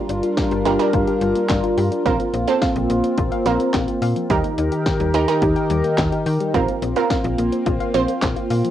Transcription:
Already playing: analog synth pad G3 D4 F4 A#4, synth pluck D4 G4 A#4
0.09 fm bass G1, synth arpeggio sound D4, closed hi-hat
0.23 synth arpeggio sound F4, closed hi-hat
0.37 synth arpeggio sound G4, kick, snare, closed hi-hat
0.51 fm bass G1, synth arpeggio sound G3, closed hi-hat
0.65 fm bass G1, synth arpeggio sound A#3, synth pluck D4 G4 A#4, closed hi-hat
0.79 synth pluck D4 G4 A#4, synth arpeggio sound D4, closed hi-hat
0.93 fm bass G1, synth arpeggio sound F4, kick, closed hi-hat
1.07 synth arpeggio sound G4, closed hi-hat
1.21 fm bass G1, synth arpeggio sound G3, closed hi-hat
1.36 synth arpeggio sound A#3, closed hi-hat
1.50 fm bass G1, synth arpeggio sound D4, kick, snare, clap, closed hi-hat
1.64 synth arpeggio sound F4, closed hi-hat
1.78 fm bass G2, synth arpeggio sound G4, open hi-hat
1.92 synth arpeggio sound G3, closed hi-hat
2.06 fm bass A#1, synth arpeggio sound F3, analog synth pad A#3 C4, synth pluck C4 F4 A#4, kick, closed hi-hat
2.20 synth arpeggio sound A#3, closed hi-hat
2.34 fm bass A#1, synth arpeggio sound C4, closed hi-hat
2.47 synth pluck C4 F4 A4, synth arpeggio sound F4, closed hi-hat
2.62 synth arpeggio sound F5, kick, snare, closed hi-hat
2.76 fm bass A#1, synth arpeggio sound F3, closed hi-hat
2.90 fm bass A#1, synth arpeggio sound A#3, closed hi-hat
3.04 synth arpeggio sound C4, closed hi-hat
3.18 fm bass A#1, synth arpeggio sound F4, kick, closed hi-hat
3.32 synth arpeggio sound F5, closed hi-hat
3.46 fm bass A#1, synth arpeggio sound F3, synth pluck C4 F4 A#4, closed hi-hat
3.60 synth arpeggio sound A#3, closed hi-hat
3.74 fm bass A#1, synth arpeggio sound C4, kick, snare, clap, closed hi-hat
3.88 synth arpeggio sound F4, closed hi-hat
4.02 fm bass A#2, synth arpeggio sound F5, open hi-hat
4.16 synth arpeggio sound F3, closed hi-hat
4.30 fm bass D#2, analog synth pad D#3 D#4 G4 A#4, synth arpeggio sound G3, synth pluck D#4 G4 A#4, kick, closed hi-hat
4.44 synth arpeggio sound A#3, closed hi-hat
4.58 fm bass D#2, synth arpeggio sound D#4, closed hi-hat
4.72 synth arpeggio sound G4, closed hi-hat
4.86 synth arpeggio sound G5, kick, snare, closed hi-hat
5.00 fm bass D#2, synth arpeggio sound G3, closed hi-hat
5.14 fm bass D#2, synth arpeggio sound A#3, synth pluck D#4 G4 A#4, closed hi-hat
5.28 synth pluck D#4 G4 A#4, synth arpeggio sound D#4, closed hi-hat
5.42 fm bass D#2, synth arpeggio sound G4, kick, closed hi-hat
5.56 synth arpeggio sound G5, closed hi-hat
5.70 fm bass D#2, synth arpeggio sound G3, closed hi-hat
5.84 synth arpeggio sound A#3, closed hi-hat
5.98 fm bass D#2, synth arpeggio sound D#4, kick, snare, clap, closed hi-hat
6.12 synth arpeggio sound G4, closed hi-hat
6.26 fm bass D#3, synth arpeggio sound G5, open hi-hat
6.40 synth arpeggio sound G3, closed hi-hat
6.54 fm bass A#1, synth arpeggio sound F3, analog synth pad A#3 C4 F4, synth pluck C4 F4 A#4, kick, closed hi-hat
6.68 synth arpeggio sound A#3, closed hi-hat
6.82 fm bass A#1, synth arpeggio sound C4, closed hi-hat
6.96 synth pluck C4 F4 A#4, synth arpeggio sound F4, closed hi-hat
7.10 synth arpeggio sound F5, kick, snare, closed hi-hat
7.24 fm bass A#1, synth arpeggio sound F3, closed hi-hat
7.38 fm bass A#1, synth arpeggio sound A#3, closed hi-hat
7.52 synth arpeggio sound C4, closed hi-hat
7.66 fm bass A#1, synth arpeggio sound F4, kick, closed hi-hat
7.80 synth arpeggio sound F5, closed hi-hat
7.94 fm bass A#1, synth arpeggio sound F3, synth pluck C4 F4 C5, closed hi-hat
8.08 synth arpeggio sound A#3, closed hi-hat
8.22 fm bass A#1, synth arpeggio sound C4, kick, snare, clap, closed hi-hat
8.36 synth arpeggio sound F4, closed hi-hat
8.50 fm bass A#2, synth arpeggio sound F5, open hi-hat
8.64 synth arpeggio sound F3, closed hi-hat

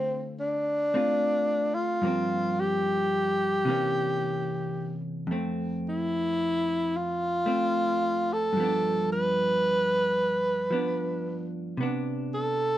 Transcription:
Already playing: hollow-body jazz guitar D3 A3 C4 F4, tenor saxophone C4
0.40 tenor saxophone D4
0.94 hollow-body jazz guitar A3 C4 F4
1.75 tenor saxophone F4
2.02 hollow-body jazz guitar G2 F3 A#3
2.07 hollow-body jazz guitar C4
2.60 tenor saxophone G4
3.65 hollow-body jazz guitar C3 E3 A#3
3.70 hollow-body jazz guitar C#4
5.27 hollow-body jazz guitar F2
5.31 hollow-body jazz guitar A3 C4
5.89 tenor saxophone E4
6.97 tenor saxophone F4
7.46 hollow-body jazz guitar A3 C4
8.33 tenor saxophone A4
8.53 hollow-body jazz guitar G2
8.57 hollow-body jazz guitar F3 B3
8.63 hollow-body jazz guitar D4
9.12 tenor saxophone B4
10.71 hollow-body jazz guitar F3 B3 D4
11.77 hollow-body jazz guitar C3 B3
11.83 hollow-body jazz guitar D4
12.34 tenor saxophone A4

